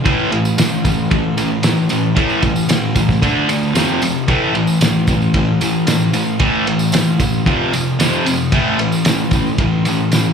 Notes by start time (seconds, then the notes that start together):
0.04 A2 E3 A3, kick, ride
0.32 A2 E3, ride
0.45 tambourine
0.58 A2 E3, snare, ride, tambourine
0.84 A2 E3, kick, ride, tambourine
0.98 tambourine
1.10 A2 E3, kick, ride
1.37 A2 E3, ride, tambourine
1.63 A2 E3, snare, ride, tambourine
1.76 tambourine
1.89 A2 E3, ride, tambourine
2.15 A2 E3 A3, kick, ride
2.30 tambourine
2.42 A2 E3, kick, ride, tambourine
2.56 tambourine
2.69 A2 E3, snare, ride, tambourine
2.95 A2 E3, kick, ride, tambourine
3.09 kick, snare, tambourine
3.22 D3 A3 D4, kick, ride, tambourine
3.49 D3 A3, ride, tambourine
3.63 tambourine
3.75 F2 C3 F3, snare, ride, tambourine
3.89 tambourine
4.02 F2 C3, ride, tambourine
4.28 A2 E3 A3, kick, ride
4.55 A2 E3, ride
4.67 tambourine
4.81 A2 E3, snare, ride, tambourine
5.07 A2 E3, kick, ride, tambourine
5.22 tambourine
5.34 A2 E3, kick, ride
5.61 A2 E3, ride, tambourine
5.87 A2 E3, snare, ride, tambourine
6.01 tambourine
6.13 A2 E3, ride, tambourine
6.39 A2 E3 A3, kick, ride
6.66 A2 E3, ride
6.79 tambourine
6.92 A2 E3, snare, ride, tambourine
7.20 A2 E3, kick, ride, tambourine
7.34 tambourine
7.46 F2 C3 F3, kick, ride
7.73 F2 C3, ride, tambourine
7.99 F2 C3 F3, snare, ride, tambourine
8.14 tambourine
8.26 F2 C3, ride, tambourine
8.52 A2 E3 A3, kick, ride
8.79 A2 E3, ride
8.92 tambourine
9.05 A2 E3, snare, ride, tambourine
9.31 A2 E3, kick, ride, tambourine
9.46 tambourine
9.58 A2 E3, kick, ride
9.85 A2 E3, ride, tambourine
10.12 A2 E3, snare, ride, tambourine
10.25 tambourine